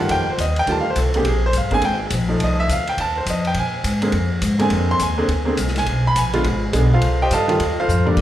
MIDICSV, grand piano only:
0, 0, Header, 1, 2, 480
1, 0, Start_track
1, 0, Tempo, 288462
1, 160, Time_signature, 4, 2, 24, 8
1, 13665, End_track
2, 0, Start_track
2, 0, Title_t, "Grand piano"
2, 0, Program_c, 0, 0
2, 0, Note_on_c, 0, 51, 70
2, 0, Note_on_c, 0, 55, 58
2, 0, Note_on_c, 0, 57, 56
2, 0, Note_on_c, 0, 65, 71
2, 187, Note_on_c, 0, 79, 103
2, 390, Note_off_c, 0, 51, 0
2, 392, Note_off_c, 0, 55, 0
2, 399, Note_off_c, 0, 57, 0
2, 401, Note_off_c, 0, 65, 0
2, 463, Note_off_c, 0, 79, 0
2, 498, Note_on_c, 0, 72, 75
2, 655, Note_off_c, 0, 72, 0
2, 674, Note_on_c, 0, 75, 80
2, 946, Note_off_c, 0, 75, 0
2, 987, Note_on_c, 0, 79, 111
2, 1124, Note_on_c, 0, 51, 62
2, 1134, Note_on_c, 0, 55, 60
2, 1140, Note_off_c, 0, 79, 0
2, 1143, Note_on_c, 0, 57, 55
2, 1148, Note_on_c, 0, 65, 61
2, 1177, Note_on_c, 0, 81, 93
2, 1304, Note_off_c, 0, 81, 0
2, 1342, Note_on_c, 0, 77, 88
2, 1390, Note_off_c, 0, 51, 0
2, 1395, Note_off_c, 0, 55, 0
2, 1399, Note_off_c, 0, 57, 0
2, 1402, Note_off_c, 0, 65, 0
2, 1467, Note_off_c, 0, 77, 0
2, 1501, Note_on_c, 0, 72, 86
2, 1627, Note_off_c, 0, 72, 0
2, 1631, Note_on_c, 0, 69, 72
2, 1905, Note_off_c, 0, 69, 0
2, 1906, Note_on_c, 0, 50, 64
2, 1911, Note_on_c, 0, 58, 64
2, 1924, Note_on_c, 0, 60, 62
2, 1933, Note_on_c, 0, 68, 69
2, 1944, Note_on_c, 0, 67, 76
2, 2065, Note_off_c, 0, 50, 0
2, 2068, Note_off_c, 0, 58, 0
2, 2075, Note_off_c, 0, 60, 0
2, 2079, Note_off_c, 0, 68, 0
2, 2098, Note_off_c, 0, 67, 0
2, 2136, Note_on_c, 0, 68, 84
2, 2398, Note_off_c, 0, 68, 0
2, 2430, Note_on_c, 0, 72, 106
2, 2581, Note_off_c, 0, 72, 0
2, 2624, Note_on_c, 0, 77, 77
2, 2849, Note_on_c, 0, 50, 72
2, 2849, Note_on_c, 0, 58, 64
2, 2862, Note_on_c, 0, 60, 74
2, 2873, Note_on_c, 0, 68, 83
2, 2881, Note_off_c, 0, 77, 0
2, 2896, Note_on_c, 0, 80, 112
2, 3017, Note_off_c, 0, 50, 0
2, 3017, Note_off_c, 0, 58, 0
2, 3023, Note_off_c, 0, 60, 0
2, 3029, Note_off_c, 0, 68, 0
2, 3054, Note_off_c, 0, 80, 0
2, 3075, Note_on_c, 0, 79, 100
2, 3243, Note_off_c, 0, 79, 0
2, 3800, Note_on_c, 0, 53, 69
2, 3811, Note_on_c, 0, 57, 66
2, 3814, Note_on_c, 0, 63, 58
2, 3827, Note_on_c, 0, 69, 73
2, 4060, Note_on_c, 0, 75, 91
2, 4319, Note_off_c, 0, 75, 0
2, 4324, Note_on_c, 0, 76, 107
2, 4434, Note_off_c, 0, 53, 0
2, 4440, Note_off_c, 0, 57, 0
2, 4441, Note_off_c, 0, 63, 0
2, 4448, Note_off_c, 0, 69, 0
2, 4487, Note_off_c, 0, 76, 0
2, 4530, Note_on_c, 0, 77, 91
2, 4794, Note_off_c, 0, 77, 0
2, 4814, Note_on_c, 0, 79, 90
2, 4973, Note_off_c, 0, 79, 0
2, 4996, Note_on_c, 0, 81, 103
2, 5267, Note_off_c, 0, 81, 0
2, 5284, Note_on_c, 0, 72, 75
2, 5447, Note_off_c, 0, 72, 0
2, 5496, Note_on_c, 0, 75, 78
2, 5758, Note_off_c, 0, 75, 0
2, 5779, Note_on_c, 0, 79, 96
2, 5935, Note_off_c, 0, 79, 0
2, 5971, Note_on_c, 0, 80, 90
2, 6670, Note_off_c, 0, 80, 0
2, 6681, Note_on_c, 0, 50, 71
2, 6685, Note_on_c, 0, 58, 67
2, 6694, Note_on_c, 0, 60, 65
2, 6702, Note_on_c, 0, 68, 78
2, 6853, Note_off_c, 0, 50, 0
2, 6855, Note_off_c, 0, 58, 0
2, 6859, Note_off_c, 0, 60, 0
2, 6864, Note_off_c, 0, 68, 0
2, 7633, Note_on_c, 0, 50, 78
2, 7637, Note_on_c, 0, 58, 70
2, 7641, Note_on_c, 0, 60, 75
2, 7647, Note_on_c, 0, 68, 81
2, 7677, Note_on_c, 0, 80, 88
2, 8114, Note_off_c, 0, 80, 0
2, 8173, Note_on_c, 0, 84, 117
2, 8271, Note_off_c, 0, 50, 0
2, 8272, Note_off_c, 0, 58, 0
2, 8275, Note_off_c, 0, 60, 0
2, 8278, Note_off_c, 0, 68, 0
2, 8332, Note_off_c, 0, 84, 0
2, 8353, Note_on_c, 0, 80, 84
2, 8610, Note_on_c, 0, 50, 86
2, 8614, Note_on_c, 0, 58, 78
2, 8621, Note_on_c, 0, 60, 73
2, 8629, Note_on_c, 0, 68, 86
2, 8778, Note_off_c, 0, 50, 0
2, 8779, Note_off_c, 0, 58, 0
2, 8783, Note_off_c, 0, 60, 0
2, 8787, Note_off_c, 0, 68, 0
2, 9061, Note_off_c, 0, 80, 0
2, 9071, Note_on_c, 0, 58, 69
2, 9073, Note_on_c, 0, 50, 75
2, 9088, Note_on_c, 0, 60, 74
2, 9097, Note_on_c, 0, 68, 78
2, 9248, Note_off_c, 0, 58, 0
2, 9249, Note_off_c, 0, 50, 0
2, 9256, Note_off_c, 0, 60, 0
2, 9260, Note_off_c, 0, 68, 0
2, 9616, Note_on_c, 0, 80, 103
2, 10044, Note_off_c, 0, 80, 0
2, 10106, Note_on_c, 0, 83, 113
2, 10259, Note_off_c, 0, 83, 0
2, 10277, Note_on_c, 0, 80, 88
2, 10537, Note_on_c, 0, 50, 80
2, 10544, Note_on_c, 0, 56, 74
2, 10546, Note_on_c, 0, 59, 70
2, 10555, Note_on_c, 0, 65, 89
2, 10700, Note_off_c, 0, 50, 0
2, 10704, Note_off_c, 0, 56, 0
2, 10705, Note_off_c, 0, 59, 0
2, 10709, Note_off_c, 0, 65, 0
2, 10983, Note_off_c, 0, 80, 0
2, 11193, Note_on_c, 0, 50, 81
2, 11202, Note_on_c, 0, 56, 76
2, 11212, Note_on_c, 0, 59, 71
2, 11220, Note_on_c, 0, 68, 81
2, 11464, Note_off_c, 0, 50, 0
2, 11468, Note_off_c, 0, 56, 0
2, 11473, Note_off_c, 0, 59, 0
2, 11477, Note_off_c, 0, 68, 0
2, 11541, Note_on_c, 0, 77, 93
2, 11546, Note_on_c, 0, 69, 70
2, 11550, Note_on_c, 0, 65, 72
2, 11550, Note_on_c, 0, 72, 70
2, 11966, Note_off_c, 0, 77, 0
2, 11969, Note_off_c, 0, 69, 0
2, 11971, Note_off_c, 0, 65, 0
2, 11971, Note_off_c, 0, 72, 0
2, 12018, Note_on_c, 0, 79, 98
2, 12019, Note_on_c, 0, 75, 76
2, 12027, Note_on_c, 0, 67, 80
2, 12030, Note_on_c, 0, 72, 84
2, 12174, Note_off_c, 0, 75, 0
2, 12174, Note_off_c, 0, 79, 0
2, 12179, Note_off_c, 0, 67, 0
2, 12180, Note_off_c, 0, 72, 0
2, 12191, Note_on_c, 0, 81, 107
2, 12200, Note_on_c, 0, 69, 84
2, 12206, Note_on_c, 0, 75, 84
2, 12206, Note_on_c, 0, 77, 86
2, 12443, Note_on_c, 0, 51, 83
2, 12445, Note_on_c, 0, 55, 68
2, 12454, Note_on_c, 0, 57, 70
2, 12466, Note_on_c, 0, 65, 83
2, 12613, Note_off_c, 0, 51, 0
2, 12614, Note_off_c, 0, 55, 0
2, 12619, Note_off_c, 0, 57, 0
2, 12625, Note_off_c, 0, 65, 0
2, 12899, Note_off_c, 0, 81, 0
2, 12904, Note_off_c, 0, 69, 0
2, 12907, Note_off_c, 0, 75, 0
2, 12907, Note_off_c, 0, 77, 0
2, 12975, Note_on_c, 0, 77, 96
2, 12976, Note_on_c, 0, 72, 79
2, 12980, Note_on_c, 0, 65, 70
2, 12980, Note_on_c, 0, 69, 78
2, 13395, Note_on_c, 0, 50, 79
2, 13403, Note_off_c, 0, 77, 0
2, 13404, Note_off_c, 0, 72, 0
2, 13405, Note_on_c, 0, 58, 66
2, 13406, Note_off_c, 0, 65, 0
2, 13406, Note_off_c, 0, 69, 0
2, 13408, Note_on_c, 0, 55, 67
2, 13422, Note_on_c, 0, 62, 83
2, 13665, Note_off_c, 0, 50, 0
2, 13665, Note_off_c, 0, 55, 0
2, 13665, Note_off_c, 0, 58, 0
2, 13665, Note_off_c, 0, 62, 0
2, 13665, End_track
0, 0, End_of_file